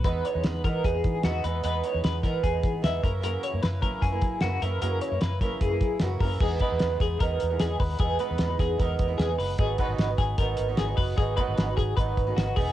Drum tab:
CC |--------|--------|--------|--------|
HH |xxxxxxxx|xxxxxxxx|xxxxxxxx|xxxxxxxo|
SD |--o---o-|--oo--o-|--o---o-|--o---o-|
BD |o--ooo--|---ooo-o|---ooo--|---ooo-o|

CC |x-------|--------|--------|--------|
HH |-xxxxxxo|xxxxxxxo|xxxxxxxo|xxxxxxxo|
SD |--o---o-|--oo--o-|--oo--o-|--o---o-|
BD |oo-oo--o|o--ooo--|oo-oo--o|oo-ooo-o|